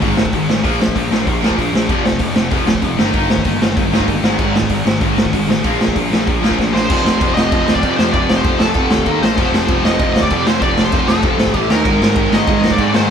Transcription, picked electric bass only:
0.02 G#1
0.18 G#1
0.33 G#1
0.48 A1
0.65 A#1
0.96 A#1
1.11 A#1
1.28 A#1
1.42 A#1
1.58 A#1
1.73 A#1
1.89 F1
2.20 F1
2.36 F1
2.52 F1
2.67 F1
2.83 F1
2.99 G1
3.14 G1
3.45 G1
3.61 G1
3.77 G1
3.92 G1
4.08 G1
4.22 G#1
4.39 G#1
4.70 G#1
4.84 G#1
5.01 G#1
5.16 G#1
5.33 G#1
5.47 A1
5.65 A#1
5.96 A#1
6.10 A#1
6.28 A#1
6.42 A#1
6.59 A#1
6.74 A#1
6.90 F1
7.05 F1
7.21 F1
7.36 F1
7.52 F1
7.68 D#2
7.83 F2
7.99 F2
8.14 F1
8.30 F1
8.44 F1
8.61 F1
8.75 F1
8.91 D#2
9.06 D#2
9.22 A#1
9.38 F1
9.53 F1
9.69 F1
9.84 F1
10.00 F1
10.16 D#2
10.31 F2
10.47 F2
10.61 F1
10.77 F1
10.93 F1
11.07 F1
11.23 F1
11.38 G#1
11.54 A1
11.69 D#2
11.85 G#1
12.00 G#1
12.16 G#1
12.30 G#1
12.48 G#1
12.62 F2
12.79 G#2
12.93 G#2

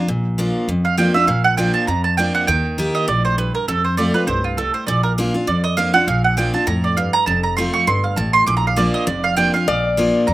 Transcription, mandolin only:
0.85 F5
0.98 G5
1.14 E5
1.27 F5
1.44 F#5
1.57 G5
1.74 A5
1.87 A#5
2.04 A5
2.17 G5
2.35 F#5
2.47 G5
2.95 D#5
3.08 D5
3.25 C5
3.38 B4
3.55 A#4
3.68 A4
3.84 C5
3.97 D5
4.14 B4
4.27 C5
4.44 F4
4.57 A4
4.74 C5
4.87 D5
5.03 A#4
5.47 D5
5.64 D#5
5.77 F5
5.94 F#5
6.08 F5
6.24 F#5
6.37 G5
6.54 A5
6.67 A#5
6.84 D5
6.97 F5
7.13 A#5
7.26 A5
7.43 A#5
7.57 C6
7.74 C#6
7.87 C6
8.04 F5
8.16 A5
8.33 C6
8.46 D6
8.57 A#5
8.67 F5
8.77 D5
8.94 D#5
9.07 D5
9.24 F5
9.37 G5
9.54 F5
10.27 A#5

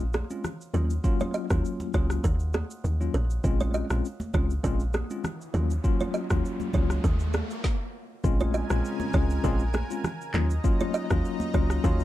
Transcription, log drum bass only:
Already playing: A#1
0.74 D#2
1.51 D#2
1.94 C#2
2.24 D#2
2.84 D#2
3.14 A#1
3.44 A#1
3.90 A#1
4.34 C#2
4.64 A#1
5.54 D#2
6.31 D#2
6.74 C#2
7.04 D#2
8.24 A#1
8.70 A#1
9.14 C#2
9.44 A#1
10.34 D#2
11.11 D#2
11.54 C#2
11.84 D#2

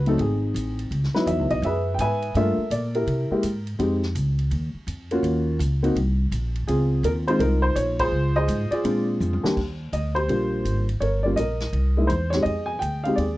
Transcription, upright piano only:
Already playing: F#4
0.07 F#3 A3 C4 D#4 A4
0.20 C4 D#4 G#4
1.15 F#3 B3 D#4 E4 B4
1.27 E5
1.51 D#5
1.65 G#4 B4 E5
1.94 G5
2.00 B4 E5 G#5
2.36 A3 A#3 D4 F4 A4 A#4 E5
2.71 D5
2.95 E4 G4 A#4
3.31 G#3 A#3 E4 G4
3.79 G#3 C4 D#4 G4
5.11 A#3 C#4 F4 F#4
5.83 A#3 C4 D#4 F#4
6.67 C4 F4 G#4
7.05 A#4
7.28 G#3 C4 D#4 F4 C5
7.40 D#4 F4 A#4
7.62 C5
7.76 C#5
8.00 F4 G#4 C5
8.36 G#4 C5 D#5
8.71 F4 G#4 D5
8.84 G#3 C4 D4 F4
9.43 D#2 G3 A#3 D4 G4
9.93 D#5
10.15 G4 C5
10.29 G3 A#3 D4 F4
11.00 A#4 C#5
11.23 G3 A#3 C#4 F4 D5
11.36 A#4 D#5
11.97 G#3 A#3 D#4 E4
12.07 C5
12.30 G#3 C4 D#4 C#5
12.35 G4
12.43 D#5
12.47 G#4
12.66 G#5
12.79 G5
13.04 G#3 C4 D#4 G4 F5
13.16 G#4 D5

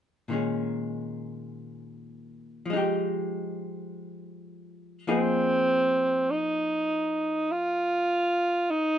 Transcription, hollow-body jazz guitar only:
0.28 A#2 D#3 G#3
0.33 C#4
2.66 F3
2.70 G#3 D#4
2.77 G4
5.07 F3 A#3 D#4 G#4

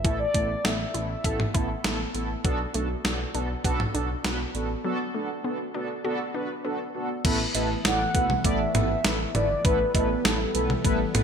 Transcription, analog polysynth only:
0.05 A3 B3 E4 A4
0.35 A3 B3 E4 A4
0.65 A3 B3 E4 A4
0.95 A3 B3 E4 A4
1.25 A3 B3 E4 A4
1.55 A3 B3 E4 A4
1.84 A3 B3 E4 A4
2.14 A3 B3 E4 A4
2.44 B3 D4 F#4 A4
2.75 B3 D4 F#4 A4
3.05 B3 D4 F#4 A4
3.35 B3 D4 F#4 A4
3.64 B3 D4 F#4 A4
3.94 B3 D4 F#4 A4
4.24 B3 D4 F#4 B4
4.54 B3 D4 F#4 A4
4.84 B3 D4 F#4 A4
5.14 B3 D4 F#4 A4
5.44 B3 D4 F#4 A4
5.75 B3 D4 F#4 A4
6.05 B3 D4 F#4 A4
6.35 B3 D4 F#4 B4
6.65 B3 D4 F#4 A4
6.95 B3 D4 F#4 A4
7.25 A3 B3 E4 A4 B4
7.55 A3 B3 E4 A4 B4
7.85 A3 B3 E4 A4 D5
8.15 A3 B3 E4 A4 B4
8.45 A3 B3 E4 A4 D5
8.75 A3 B3 E4 A4 B4
9.05 A3 B3 E4 A4 B4
9.35 A3 B3 E4 A4 B4
9.65 A3 B3 E4 A4 B4
9.95 A3 B3 E4 A4 B4
10.25 A3 B3 E4 A4 B4
10.55 A3 B3 E4 A4 B4
10.85 A3 B3 E4 A4 B4
11.14 A3 B3 E4 A4 B4

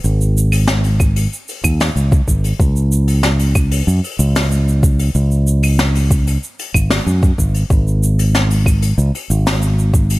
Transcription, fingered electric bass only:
0.04 G#1
1.64 D#2
1.96 C#2
2.28 G#1
2.60 C#2
3.87 F#2
4.19 C#2
5.15 C#2
6.75 G#1
7.06 F#2
7.38 G#1
7.70 G#1
8.98 C#2
9.30 G#1

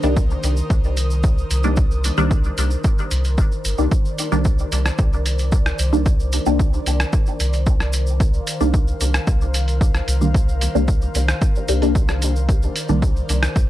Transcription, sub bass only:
0.03 C2
0.43 C2
0.70 C2
1.51 C2
2.18 C2
2.58 C2
3.11 C2
3.38 G1
3.65 G1
3.78 C2
4.32 C2
4.72 C2
4.99 C2
5.79 C2
6.46 C2
6.86 C2
7.40 C2
8.61 C2
9.01 C2
9.27 C2
10.08 C2
10.75 C2
11.15 C2
11.68 C2
12.89 C2
13.29 C2
13.56 C2

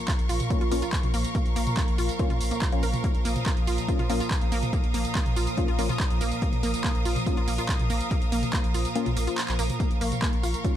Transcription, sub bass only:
0.19 A#1
0.29 A#1
0.61 A#1
0.72 A#1
1.03 A#1
1.14 A#1
1.46 A#1
1.56 A#1
1.88 A#1
1.98 A#1
2.30 A#1
2.41 A#1
2.72 A#1
2.83 A#1
3.15 A#1
3.25 A#1
3.57 A#1
3.67 A#1
3.99 A#1
4.10 A#1
4.41 A#1
4.52 A#1
4.84 A#1
4.94 A#1
5.26 A#1
5.36 A#1
5.68 A#1
5.79 A#1
6.10 A#1
6.21 A#1
6.53 A#1
6.63 A#1
6.95 A#1
7.05 A#1
7.37 A#1
7.48 A#1
7.79 A#1
7.90 A#1
8.22 A#1
8.32 A#1
8.64 A#1
8.74 A#1
9.06 A#1
9.17 A#1
9.48 A#1
9.59 A#1
9.91 A#1
10.01 A#1
10.33 A#1
10.43 A#1

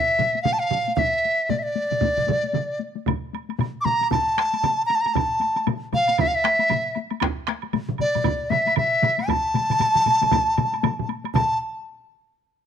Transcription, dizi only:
Already playing: E5
0.42 F5
0.53 A5
0.60 F5
0.95 E5 F5
1.50 D5
1.59 E5
1.63 D5
3.81 A#5 D6
4.11 A5
4.86 A#5
4.95 A5
5.01 A#5
5.13 A5
5.94 F5
6.21 E5
6.27 F5
6.35 E5
8.01 D5
8.50 E5
8.78 E5
9.29 A5
11.34 A5

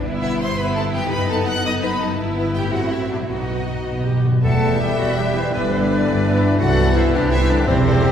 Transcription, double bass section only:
0.05 G1
1.11 F#1
2.19 G1
2.74 A1
3.31 B1
4.44 E1
4.99 E1
5.54 G1
6.08 G1
6.60 C2
7.14 C2
7.68 E1

